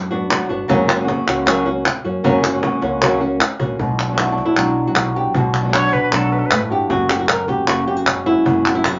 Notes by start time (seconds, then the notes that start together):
Already playing: F#2
0.11 B3 D4 F#4
0.30 F#3 B3 D4 F#4, cajon slap, clap
0.49 G1 B3 D4 F#4
0.68 F#1 C#3 F#3 A#3 C#4 F#4, muted nylon-string guitar stroke, cajon bass
0.88 A#3 C#4 F#4, clap
0.95 F#3 A#3 C#4 F#4
0.99 F#3 A#3 C#4 F#4
1.04 F#3 A#3 C#4 F#4
1.08 C#3 F#3 A#3 C#4 F#4, muted nylon-string guitar stroke, cajon slap
1.27 C#2 A#3 C#4 F#4, cajon slap, clap
1.46 C#3 F#3 A#3 C#4 F#4, clap
1.65 A#3 C#4 F#4
1.85 muted nylon-string guitar stroke, cajon slap, clap
2.05 F#2 A#3 C#4 F#4
2.24 F#1 C#3 F#3 A#3 C#4 F#4, muted nylon-string guitar stroke, cajon bass
2.43 A#3 C#4 F#4, clap
2.54 F#3 A#3 C#4 F#4
2.58 F#3 A#3 C#4 F#4
2.63 C#3 F#3 A#3 C#4 F#4, muted nylon-string guitar stroke, cajon slap
2.81 C#2 A#3 C#4 F#4, cajon slap
3.01 C#3 F#3 A#3 C#4 F#4, cajon bass, clap
3.20 A#3 C#4 F#4
3.41 muted nylon-string guitar stroke, clap
3.59 A#1 A#3 C#4 F#4, cajon bass
3.79 B1 B2 B4, muted nylon-string guitar stroke, cajon bass, cajon slap
3.99 D4, clap
4.09 F#3 B3 D4 F#4
4.13 F#3 B3 D4 F#4
4.18 B2 F#3 B3 D4 E4 F#4, cajon slap, clap
4.32 D4
4.38 cajon bass, cajon slap
4.45 E4
4.56 B1 B2 F#3 B3 D4 F#4, clap
4.87 F#4
4.95 B1 D4, muted nylon-string guitar stroke, cajon slap, clap
5.15 B3 D4 F#4 G4
5.34 B1 B2 F#4, muted nylon-string guitar stroke, cajon bass
5.54 clap
5.60 F#3 B3 D4 F#4
5.64 F#3 B3 D4 F#4
5.69 F#3 B3 D4 F#4
5.73 B2 F#3 B3 D4 F#4 C#5, cajon slap, clap
5.93 B4, cajon bass
6.12 B1 B2 F#3 B3 D4 F#4 A4, clap
6.32 D4 B4
6.39 A4
6.46 B4
6.51 G1 A2, muted nylon-string guitar stroke, cajon slap, clap
6.70 G2 B3 D4 F#4 G4
6.89 F#1 F#2 C#3 F#3 A#3 C#4 F#4, cajon bass, cajon slap
7.09 A#3 C#4 F#4 G4, clap
7.19 F#4
7.28 A#4, muted nylon-string guitar stroke, cajon slap, clap
7.47 A#3 C#4 F#4 G4, cajon bass
7.67 F#1 C#3 F#3 A#3 C#4 F#4, cajon slap, clap
7.87 A#3 C#4 F#4 G4
7.96 F#4
8.07 F#1 C#4, muted nylon-string guitar stroke, cajon slap, clap
8.25 A#3 C#4 E4 F#4
8.45 F#1 F#2 C#3 F#3 A#3 C#4 F#4, cajon bass
8.65 A#3 C#4 D4 F#4, clap
8.75 E4
8.85 F#4, muted nylon-string guitar stroke, cajon slap, clap